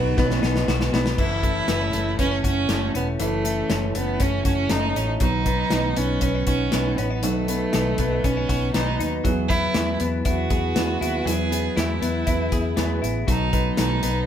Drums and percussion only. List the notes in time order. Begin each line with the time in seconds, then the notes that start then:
0.18 kick, snare
0.31 snare
0.43 snare
0.56 snare
0.68 snare
0.81 snare
0.94 snare
1.06 snare
1.18 kick, crash
1.43 kick, closed hi-hat
1.68 snare, closed hi-hat
1.93 closed hi-hat
2.19 kick, closed hi-hat
2.44 kick, closed hi-hat
2.69 snare, closed hi-hat
2.95 closed hi-hat
3.20 closed hi-hat
3.45 closed hi-hat
3.70 snare, closed hi-hat
3.95 closed hi-hat
4.19 kick, snare, closed hi-hat
4.45 kick, closed hi-hat
4.69 snare, closed hi-hat
4.96 closed hi-hat
5.20 kick, closed hi-hat
5.46 kick, closed hi-hat
5.70 snare, closed hi-hat
5.97 closed hi-hat
6.20 kick, snare, closed hi-hat
6.47 kick, closed hi-hat
6.72 snare, closed hi-hat
6.98 closed hi-hat
7.23 closed hi-hat
7.48 closed hi-hat
7.73 snare, closed hi-hat
7.98 kick, closed hi-hat
8.24 kick, snare, closed hi-hat
8.49 kick, closed hi-hat
8.74 snare, closed hi-hat
9.00 closed hi-hat
9.25 kick, closed hi-hat
9.50 kick, closed hi-hat
9.74 snare, closed hi-hat
10.00 closed hi-hat
10.25 kick, closed hi-hat
10.50 kick, closed hi-hat
10.76 snare, closed hi-hat
11.02 closed hi-hat
11.27 closed hi-hat
11.52 closed hi-hat
11.77 snare, closed hi-hat
12.03 closed hi-hat
12.27 kick, closed hi-hat
12.52 kick, closed hi-hat
12.77 snare, closed hi-hat
13.04 closed hi-hat
13.28 kick, closed hi-hat
13.53 kick, closed hi-hat
13.77 snare, closed hi-hat
14.03 closed hi-hat